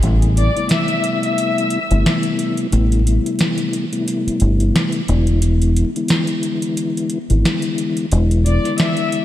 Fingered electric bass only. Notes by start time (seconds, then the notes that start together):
0.03 A1
1.91 G1
2.73 A1
4.27 muted fingered electric bass stroke
4.41 G1
5.09 E1
7.30 G#1
8.12 E1